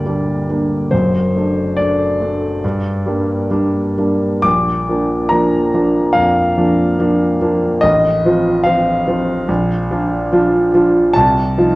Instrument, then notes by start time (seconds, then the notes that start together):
grand piano
Already playing: D2 G3 A#3 D4 D5 G5
0.06 G3 A#3 D4
0.49 G3 A#3 D4
0.91 F#1 F#2 C5
1.36 A3 D4
1.77 A3 D4 D5
2.21 A3 D4
2.64 G2
3.06 G3 A#3 D4
3.51 G3 A#3 D4
3.98 G3 A#3 D4
4.42 A#1 D6
4.89 F3 A#3 D4
5.29 F3 A#3 D4 A#5
5.74 F3 A#3 D4
6.13 F2 F5
6.58 F3 A#3 D4
6.99 F3 A#3 D4
7.41 F3 A#3 D4
7.81 A1 D#5
8.25 F3 C4 F4
8.64 F3 C4 F4 F5
9.07 F3 C4 F4
9.48 A#1
9.91 F3 D4 F4
10.33 F3 D4 F4
10.74 F3 D4 F4
11.14 C2 A5
11.58 F3 D#4 F4